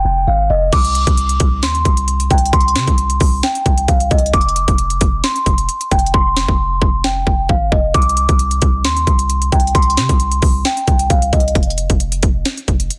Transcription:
0.00 0.25 G5 medium
0.05 0.27 F1 loud
0.27 0.49 G#1 loud
0.27 0.47 F5 medium
0.50 0.72 F1 loud
0.50 0.70 D#5 medium
0.73 1.06 C2 loud
0.73 1.59 D6 loud
0.73 kick loud
0.73 closed hi-hat medium
0.73 crash medium
0.84 closed hi-hat medium
0.95 closed hi-hat medium
1.07 1.39 C2 loud
1.07 kick medium
1.07 closed hi-hat medium
1.17 closed hi-hat medium
1.29 closed hi-hat medium
1.40 1.64 C2 loud
1.40 kick loud
1.40 closed hi-hat medium
1.63 1.84 D#2 loud
1.63 2.26 C6 medium
1.63 snare loud
1.63 closed hi-hat medium
1.75 closed hi-hat medium
1.85 2.29 C2 loud
1.85 kick medium
1.85 closed hi-hat medium
1.97 closed hi-hat medium
2.08 closed hi-hat medium
2.20 closed hi-hat medium
2.31 2.52 C2 loud
2.31 2.50 G5 medium
2.31 kick loud
2.31 closed hi-hat medium
2.38 closed hi-hat medium
2.46 closed hi-hat medium
2.53 2.77 C2 loud
2.53 3.39 C6 loud
2.53 kick loud
2.53 closed hi-hat medium
2.61 closed hi-hat medium
2.68 closed hi-hat medium
2.75 2.87 C3 loud
2.75 snare medium
2.75 closed hi-hat medium
2.87 3.19 C2 loud
2.87 kick medium
2.87 closed hi-hat medium
2.98 closed hi-hat medium
3.10 closed hi-hat medium
3.20 3.42 C2 loud
3.20 kick loud
3.20 open hi-hat medium
3.43 3.86 G5 medium
3.43 snare loud
3.43 closed hi-hat medium
3.55 closed hi-hat medium
3.66 3.87 C2 loud
3.66 kick medium
3.66 closed hi-hat medium
3.78 closed hi-hat medium
3.88 4.10 C2 loud
3.88 4.08 F5 medium
3.88 kick loud
3.88 closed hi-hat medium
4.00 closed hi-hat medium
4.11 4.33 C2 loud
4.11 4.31 D#5 medium
4.11 kick loud
4.11 closed hi-hat medium
4.18 closed hi-hat medium
4.26 closed hi-hat medium
4.33 4.67 F1 loud
4.33 5.20 D6 medium
4.33 kick loud
4.33 closed hi-hat medium
4.41 closed hi-hat medium
4.49 closed hi-hat medium
4.56 closed hi-hat medium
4.68 5.00 F1 loud
4.68 kick medium
4.68 closed hi-hat medium
4.78 closed hi-hat medium
4.90 closed hi-hat medium
5.01 5.23 F1 loud
5.01 kick loud
5.01 closed hi-hat medium
5.24 5.87 C6 medium
5.24 snare loud
5.24 closed hi-hat medium
5.36 closed hi-hat medium
5.46 5.68 F1 loud
5.46 kick medium
5.46 closed hi-hat medium
5.58 closed hi-hat medium
5.69 closed hi-hat medium
5.81 closed hi-hat medium
5.91 6.13 F1 loud
5.91 6.11 G5 medium
5.91 kick loud
5.91 closed hi-hat medium
5.99 closed hi-hat medium
6.06 closed hi-hat medium
6.14 6.47 F1 loud
6.14 7.00 C6 loud
6.14 kick loud
6.37 snare medium
6.48 6.80 F1 loud
6.48 kick medium
6.82 7.25 F1 loud
6.82 kick loud
7.04 7.47 G5 medium
7.04 snare loud
7.27 7.48 F1 loud
7.27 kick medium
7.49 7.71 G#1 loud
7.49 7.69 F5 medium
7.49 kick loud
7.72 7.94 F1 loud
7.72 7.91 D#5 medium
7.72 kick loud
7.94 8.28 C2 loud
7.94 8.81 D6 loud
7.94 kick loud
7.94 closed hi-hat medium
8.02 closed hi-hat medium
8.09 closed hi-hat medium
8.17 closed hi-hat medium
8.29 8.61 C2 loud
8.29 kick medium
8.29 closed hi-hat medium
8.39 closed hi-hat medium
8.51 closed hi-hat medium
8.62 8.86 C2 loud
8.62 kick loud
8.62 closed hi-hat medium
8.84 9.06 D#2 loud
8.84 9.48 C6 medium
8.84 snare loud
8.84 closed hi-hat medium
8.97 closed hi-hat medium
9.07 9.50 C2 loud
9.07 kick medium
9.07 closed hi-hat medium
9.19 closed hi-hat medium
9.30 closed hi-hat medium
9.42 closed hi-hat medium
9.52 9.74 C2 loud
9.52 9.72 G5 medium
9.52 kick loud
9.52 closed hi-hat medium
9.60 closed hi-hat medium
9.67 closed hi-hat medium
9.75 9.99 C2 loud
9.75 10.61 C6 medium
9.75 kick loud
9.75 closed hi-hat medium
9.82 closed hi-hat medium
9.90 closed hi-hat medium
9.97 10.09 C3 loud
9.97 snare medium
9.97 closed hi-hat medium
10.09 10.41 C2 loud
10.09 kick medium
10.09 closed hi-hat medium
10.20 closed hi-hat medium
10.32 closed hi-hat medium
10.42 10.64 C2 loud
10.42 kick loud
10.42 open hi-hat medium
10.65 11.07 G5 medium
10.65 snare loud
10.65 closed hi-hat medium
10.77 closed hi-hat medium
10.87 11.09 C2 loud
10.87 kick medium
10.87 closed hi-hat medium
10.99 closed hi-hat medium
11.10 11.32 C2 loud
11.10 11.30 F5 medium
11.10 kick loud
11.10 closed hi-hat medium
11.22 closed hi-hat medium
11.33 11.54 C2 loud
11.33 11.52 D#5 medium
11.33 kick loud
11.33 closed hi-hat medium
11.40 closed hi-hat medium
11.48 closed hi-hat medium
11.55 11.88 F1 loud
11.55 kick loud
11.55 closed hi-hat medium
11.63 closed hi-hat medium
11.70 closed hi-hat soft
11.78 closed hi-hat medium
11.90 12.22 F1 loud
11.90 kick medium
11.90 closed hi-hat medium
12.00 closed hi-hat medium
12.12 closed hi-hat medium
12.23 12.45 F1 loud
12.23 kick loud
12.23 closed hi-hat medium
12.45 snare loud
12.45 closed hi-hat medium
12.57 closed hi-hat medium
12.68 12.90 F1 loud
12.68 kick medium
12.68 closed hi-hat medium
12.80 closed hi-hat medium
12.90 closed hi-hat medium

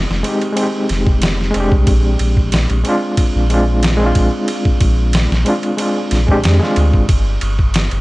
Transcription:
0.00 0.19 G#3 medium
0.00 0.21 C4 medium
0.00 0.22 D#4 medium
0.00 0.24 F4 medium
0.10 0.23 F1 medium
0.10 snare soft
0.23 0.52 G#3 medium
0.23 0.53 C4 medium
0.23 0.54 D#4 medium
0.23 ride medium
0.28 0.55 G4 medium
0.41 ride soft
0.53 1.49 G#3 medium
0.53 1.51 C4 medium
0.53 ride medium
0.59 1.52 D#4 medium
0.59 1.54 G4 medium
0.89 1.05 F1 medium
0.89 snare soft
0.89 ride medium
1.07 1.52 F1 medium
1.07 kick medium
1.22 snare loud
1.22 ride medium
1.41 snare soft
1.51 2.80 G#3 medium
1.51 2.81 C4 medium
1.51 ride medium
1.55 1.70 F1 medium
1.55 2.83 D4 medium
1.60 2.84 G4 medium
1.72 1.86 C2 medium
1.72 kick medium
1.87 2.16 A#1 medium
1.87 kick loud
1.87 ride medium
2.19 2.67 A#1 medium
2.19 ride medium
2.37 kick medium
2.52 snare loud
2.52 ride medium
2.70 2.84 A#1 medium
2.70 ride soft
2.84 3.46 G#3 medium
2.84 3.47 C4 medium
2.84 3.48 D4 medium
2.84 ride medium
2.89 3.49 F4 loud
3.17 kick loud
3.17 ride medium
3.36 4.13 A#1 medium
3.49 3.96 G#3 medium
3.49 3.96 C4 medium
3.49 3.97 D4 medium
3.49 ride medium
3.54 3.98 F4 medium
3.83 snare loud
3.83 ride medium
3.97 5.41 G#3 medium
3.97 5.42 C4 medium
4.03 5.44 D4 medium
4.03 5.45 F4 loud
4.15 4.31 A#1 medium
4.15 kick medium
4.15 ride medium
4.48 ride medium
4.65 kick medium
4.80 5.27 A#1 medium
4.80 kick medium
4.80 ride medium
5.13 snare loud
5.13 ride medium
5.31 5.45 A#1 medium
5.31 snare medium
5.45 5.74 G#3 medium
5.45 5.75 C4 medium
5.45 5.76 D4 medium
5.45 ride medium
5.49 5.77 F4 medium
5.63 ride soft
5.77 6.24 G#3 medium
5.77 6.25 C4 medium
5.77 6.26 D4 medium
5.77 ride medium
5.82 6.27 F4 medium
6.11 6.27 A#1 medium
6.11 snare soft
6.11 ride medium
6.27 6.44 A#1 medium
6.27 6.56 G#3 medium
6.27 6.57 C4 medium
6.27 6.58 D4 medium
6.27 kick medium
6.31 6.59 G4 medium
6.44 6.60 F2 medium
6.44 snare loud
6.44 ride medium
6.59 7.06 G#3 medium
6.59 7.07 C4 medium
6.59 7.08 D4 medium
6.59 snare soft
6.64 7.09 F4 loud
6.76 6.92 D2 loud
6.76 ride medium
6.94 7.07 G#1 medium
6.94 kick medium
7.09 7.38 G1 medium
7.09 kick loud
7.09 ride medium
7.41 7.89 G1 medium
7.41 ride medium
7.59 kick medium
7.74 snare loud
7.74 ride medium
7.91 8.01 G1 medium
7.91 ride soft

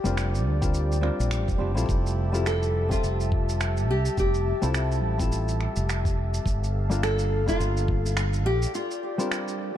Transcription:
0.00 0.58 G3 medium
0.00 0.43 G4 medium
0.00 6.42 G4 medium
0.00 1.86 D5 medium
0.05 0.46 F1 medium
0.05 0.58 C4 medium
0.05 0.59 D4 medium
0.05 0.59 F4 medium
0.05 0.59 A#4 medium
0.05 shaker medium
0.17 finger snap medium
0.17 shaker medium
0.35 shaker soft
0.46 1.09 D2 medium
0.61 1.00 G3 medium
0.61 1.00 C4 medium
0.61 1.01 D4 medium
0.61 1.01 F4 medium
0.61 1.01 A#4 medium
0.61 kick loud
0.61 shaker medium
0.74 shaker medium
0.92 shaker soft
1.01 1.56 G3 medium
1.01 1.57 C4 medium
1.01 1.57 D4 medium
1.01 1.57 F4 medium
1.01 1.58 A#4 medium
1.01 finger snap soft
1.20 1.48 A#1 medium
1.20 shaker medium
1.31 finger snap medium
1.31 shaker medium
1.48 1.56 F1 medium
1.48 kick loud
1.48 shaker soft
1.58 1.77 F1 medium
1.58 1.72 G3 medium
1.58 1.72 C4 medium
1.58 1.72 D4 medium
1.58 1.73 F4 medium
1.58 1.73 G4 medium
1.74 1.84 A#1 medium
1.74 2.29 G3 medium
1.74 2.29 C4 medium
1.74 2.30 E4 medium
1.74 2.30 F4 medium
1.74 2.30 A4 medium
1.74 shaker medium
1.89 2.96 F1 loud
1.89 6.42 E5 medium
1.89 6.42 A5 medium
1.89 kick loud
1.89 shaker medium
2.07 shaker soft
2.32 2.86 G3 medium
2.32 2.87 C4 medium
2.32 2.87 E4 medium
2.32 2.87 F4 medium
2.32 2.88 A4 medium
2.32 shaker medium
2.46 2.91 A4 loud
2.46 finger snap medium
2.46 shaker medium
2.63 shaker soft
2.89 4.57 G3 medium
2.89 4.58 C4 medium
2.89 3.90 F4 medium
2.89 4.59 F4 medium
2.89 4.59 E5 medium
2.89 kick loud
2.89 shaker medium
2.93 4.60 A4 medium
3.04 3.89 F1 medium
3.04 shaker medium
3.20 shaker soft
3.32 kick loud
3.49 shaker medium
3.61 finger snap medium
3.61 shaker medium
3.77 shaker soft
3.89 4.08 C2 medium
3.89 4.18 G4 medium
4.06 shaker medium
4.18 4.52 F1 loud
4.18 5.29 G4 medium
4.18 kick loud
4.18 shaker medium
4.34 shaker soft
4.62 5.04 C2 medium
4.62 5.15 G3 medium
4.62 5.16 C4 medium
4.62 5.16 E4 medium
4.62 5.16 F4 medium
4.62 5.17 A4 medium
4.62 shaker medium
4.74 finger snap medium
4.74 shaker medium
4.92 shaker soft
5.04 5.67 A1 medium
5.18 6.44 G3 medium
5.18 6.44 C4 medium
5.18 6.45 E4 medium
5.18 6.46 F4 medium
5.18 kick medium
5.18 shaker medium
5.23 6.46 A4 medium
5.32 shaker medium
5.48 shaker soft
5.61 finger snap soft
5.76 6.38 F1 medium
5.76 shaker medium
5.89 finger snap medium
5.89 shaker medium
6.05 kick loud
6.05 shaker soft
6.34 shaker medium
6.45 7.52 G1 loud
6.45 8.44 A4 medium
6.45 8.44 F5 medium
6.45 kick loud
6.45 shaker medium
6.64 shaker soft
6.90 7.44 G3 medium
6.90 7.44 A#3 medium
6.90 7.44 D4 medium
6.90 7.44 F4 medium
6.90 7.45 A4 medium
6.90 shaker medium
7.03 7.48 A4 loud
7.03 finger snap medium
7.03 shaker medium
7.19 shaker soft
7.46 8.44 G3 medium
7.46 8.44 A#3 medium
7.46 8.45 D4 medium
7.46 8.14 F4 medium
7.46 8.45 F4 medium
7.46 kick medium
7.46 shaker medium
7.51 8.46 A4 medium
7.60 8.46 G1 medium
7.60 shaker medium
7.77 shaker soft
7.88 kick loud
8.06 shaker medium
8.17 finger snap loud
8.17 shaker medium
8.34 shaker soft
8.46 8.65 A#1 medium
8.46 9.77 G4 medium
8.46 8.73 G4 loud
8.46 9.77 D5 medium
8.62 shaker medium
8.75 9.77 F4 loud
8.75 shaker medium
8.91 shaker soft
9.18 9.72 G3 medium
9.18 9.72 C4 medium
9.18 9.73 D4 medium
9.18 9.73 F4 medium
9.18 9.73 A#4 medium
9.18 shaker medium
9.31 finger snap loud
9.31 shaker medium
9.48 shaker soft

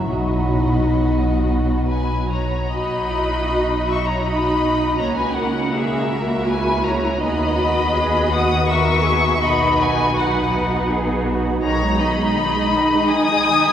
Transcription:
0.08 2.52 B1 medium
0.08 2.51 B2 soft
0.08 2.34 F#3 soft
0.08 2.47 F#3 soft
0.08 2.38 D#4 soft
0.08 1.82 F#4 soft
0.08 1.87 D#5 soft
0.08 1.83 B5 medium
1.86 2.26 B4 soft
1.86 2.27 G#5 medium
2.30 2.72 C#5 soft
2.30 2.72 A#5 medium
2.71 4.95 B1 medium
2.71 4.20 D#4 soft
2.71 3.08 F#4 soft
2.71 4.20 F#4 medium
2.71 3.84 D#5 medium
2.71 3.87 B5 medium
3.11 3.49 E4 soft
3.49 4.99 D#4 soft
3.87 4.05 E5 medium
3.87 4.05 C#6 medium
4.05 4.24 C#5 medium
4.05 4.24 A#5 medium
4.23 4.97 D#4 soft
4.23 4.97 F#4 soft
4.23 4.98 D#5 medium
4.23 4.98 B5 medium
4.97 7.22 C#2 medium
4.97 5.71 A#3 soft
4.97 5.71 C#4 medium
4.97 5.71 F#4 soft
4.97 5.17 C#5 medium
4.97 5.16 A#5 medium
5.16 5.35 B4 medium
5.16 5.34 G#5 medium
5.33 5.71 A#4 soft
5.33 5.71 F#5 medium
5.71 7.19 A#3 soft
5.71 7.19 F#4 soft
5.71 6.09 G#4 medium
5.71 6.45 A#4 medium
5.71 6.46 E5 medium
6.09 6.47 F#4 medium
6.45 7.21 E4 medium
6.45 6.85 B4 medium
6.45 6.84 G#5 medium
6.84 7.21 C#5 medium
6.84 7.21 A#5 medium
7.20 9.42 D#2 medium
7.20 9.38 B3 medium
7.20 7.57 D#4 medium
7.20 9.38 F#4 medium
7.20 8.28 D#5 medium
7.20 8.29 B5 medium
7.56 7.93 F#4 medium
7.93 8.30 G#4 medium
8.30 8.67 F#4 medium
8.30 8.67 F#5 medium
8.30 8.68 D#6 medium
8.66 9.03 A#4 medium
8.66 9.40 E5 medium
8.66 9.40 C#6 medium
9.04 9.41 G#4 medium
9.41 11.63 B1 medium
9.41 10.16 B3 medium
9.41 10.16 D#4 medium
9.41 10.91 F#4 medium
9.41 9.79 D#5 medium
9.41 9.79 B5 medium
9.79 10.15 B4 medium
9.79 10.17 G#5 medium
10.16 11.61 B3 medium
10.16 11.61 D#4 medium
10.16 10.89 B4 medium
10.16 10.91 F#5 medium
10.91 11.28 G#4 medium
11.27 11.64 F#4 medium
11.63 12.24 B1 medium
11.63 11.81 D#3 medium
11.63 13.73 D#4 medium
11.63 11.97 C#5 medium
11.63 11.98 A#5 medium
11.82 12.00 G#3 medium
11.98 12.18 D#3 medium
11.98 13.10 D#5 medium
11.98 13.10 B5 medium
12.17 12.36 G#3 medium
12.35 12.54 D#3 medium
12.54 12.73 G#3 medium
12.73 12.92 D#3 medium
12.92 13.11 G#3 medium
13.09 13.30 D#3 medium
13.09 13.73 G#5 medium
13.09 13.73 D#6 loud
13.30 13.49 G#3 medium
13.49 13.68 D#3 medium
13.67 13.73 G#3 medium

